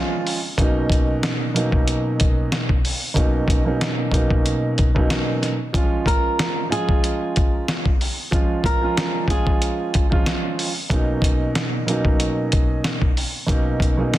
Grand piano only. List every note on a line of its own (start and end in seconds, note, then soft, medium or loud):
0.00 0.37 F3 medium
0.00 0.38 G#3 medium
0.00 0.38 C#4 medium
0.00 0.39 F4 loud
0.57 1.48 B2 loud
0.57 1.48 F#3 medium
0.57 1.48 A#3 medium
0.57 1.49 C#4 medium
0.57 1.49 D#4 loud
1.54 2.74 B2 medium
1.54 2.75 F#3 medium
1.54 2.75 A#3 medium
1.54 2.75 C#4 medium
1.54 2.76 D#4 loud
3.14 3.61 B2 loud
3.14 3.61 F#3 medium
3.14 3.62 A#3 medium
3.14 3.62 C#4 medium
3.14 3.62 D#4 loud
3.65 4.09 B2 medium
3.65 4.09 F#3 medium
3.65 4.09 A#3 medium
3.65 4.10 C#4 medium
3.65 4.10 D#4 medium
4.11 4.87 B2 medium
4.11 4.88 F#3 medium
4.11 4.88 A#3 medium
4.11 4.89 C#4 medium
4.11 4.89 D#4 loud
4.95 5.54 B2 medium
4.95 5.54 F#3 medium
4.95 5.55 A#3 medium
4.95 5.55 C#4 medium
4.95 5.55 D#4 loud
5.73 6.64 F3 loud
5.73 6.64 G#3 medium
5.73 6.65 C#4 medium
5.73 6.65 F4 loud
6.69 7.90 F3 medium
6.69 7.90 G#3 medium
6.69 7.91 C#4 medium
6.69 7.91 F4 loud
8.31 8.77 F3 medium
8.31 8.78 G#3 medium
8.31 8.78 C#4 medium
8.31 8.79 F4 loud
8.81 9.25 F3 medium
8.81 9.25 G#3 medium
8.81 9.26 C#4 medium
8.81 9.26 F4 loud
9.28 10.04 F3 medium
9.28 10.04 G#3 medium
9.28 10.05 C#4 medium
9.28 10.05 F4 loud
10.10 10.69 F3 medium
10.10 10.70 G#3 medium
10.10 10.70 C#4 medium
10.10 10.71 F4 loud
10.90 11.80 B2 medium
10.90 11.80 F#3 medium
10.90 11.81 A#3 medium
10.90 11.81 C#4 medium
10.90 11.81 D#4 loud
11.86 13.07 B2 medium
11.86 13.07 F#3 loud
11.86 13.07 A#3 medium
11.86 13.08 C#4 medium
11.86 13.08 D#4 loud
13.46 13.93 B2 loud
13.46 13.94 F#3 medium
13.46 13.94 A#3 medium
13.46 13.94 C#4 medium
13.46 13.95 D#4 loud
13.97 14.18 B2 medium
13.97 14.18 F#3 medium
13.97 14.18 A#3 medium
13.97 14.18 C#4 medium
13.97 14.18 D#4 medium